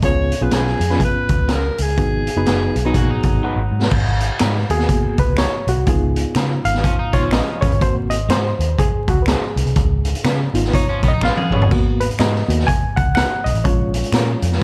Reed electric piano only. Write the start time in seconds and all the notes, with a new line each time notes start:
0.03 B3 C#4 F4 G#4
0.41 B3 C#4 F4 G#4
0.90 B3 C#4 F4 B4
1.97 B3 D#4 F#4 G#4
2.37 B3 D#4 F#4 B4
2.85 B3 D#4 F#4 G#4
3.44 F#5
4.70 A#3 B3 F#4 G#4
5.19 B4
5.38 C#5
5.69 F#4
5.87 B3 D#4 F4 G#4
6.65 F5
7.13 B3 D#4 F4 C#5
7.33 D#5
7.61 C#5
7.81 A#3 C4 F#4 C5
8.10 D#5
8.30 C5
8.79 G#4
9.09 F#4
9.22 B4
9.28 G#4
10.54 B3 D#4 F4
10.75 C#5
11.08 D#5
11.25 F5
11.53 C#5
11.71 A#3 B3 F#4
12.00 B4
12.20 D#5
12.48 A#3 B3 F#4
12.67 G#5
12.96 F#5
13.15 F#5
13.44 D#5
13.64 G#3 C#4 F4 C#5
14.60 G#3